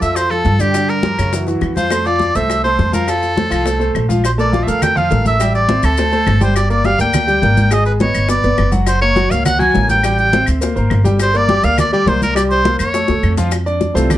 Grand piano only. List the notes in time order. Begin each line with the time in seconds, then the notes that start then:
0.00 F3 F4 A4
0.31 F3 F4 A4
0.59 D3 D4 D5
0.74 D3 D4 D5
1.04 F3 F4 G4
1.19 C#3 C#4 C#5
1.33 E3 E4 F#4
1.47 E3 E4 F#4
1.77 F3 F4 F5
1.91 A3 A4 C5
2.06 F3 F4 F5
2.35 A3 A4 C5
2.65 A3 A4 C5
2.92 F3 F4 F5
3.07 F3 F4 F5
3.36 A3 A4 C5
3.50 F3 F4 F5
3.65 A3 A4 C5
3.79 A3 A4 C5
4.08 F3 F4 F5
4.38 A3 A4 A#4
4.52 F3 F4 F5
4.67 A3 A4 A#4
4.95 F3 F4 F5
5.10 A3 A4 A#4
5.40 G3 G4 G5
5.68 C4 C5 E5
5.98 A3 A4 C5
6.12 A3 A4 C5
6.41 G3 G4 G5
6.70 A#3 A#4 D5
6.85 G3 G4 G5
6.99 A#3 A#4 D5
7.27 G3 G4 G5
7.43 A#3 A#4 D5
7.71 G#3 G#4 G#5
8.00 B3 B4 D#5
8.29 B3 B4 D5
8.44 B3 B4 D5
8.71 F#3 F#4 F#5
9.01 A#3 A#4 C#5
9.16 F#3 F#4 F#5
9.31 A#3 A#4 C#5
9.59 F#3 F#4 F#5
9.74 A#3 A#4 C#5
10.03 G3 G4 G5
10.33 C4 C5 E5
10.61 A#3 A#4 C5
10.75 A#3 A#4 C5
11.04 G3 G4 G5
11.34 A#3 A#4 D5
11.49 G3 G4 G5
11.64 A#3 A#4 D5
11.93 G3 G4 G5
12.06 A#3 A#4 D5
12.35 G3 G4 G5
12.64 A#3 A#4 C5
12.94 A3 A4 C#5
13.08 A3 A4 C#5
13.37 F3 F4 F5
13.66 D4 D5
13.94 E3 G3 A3 C4 F4 A4 C5
14.10 D4 D5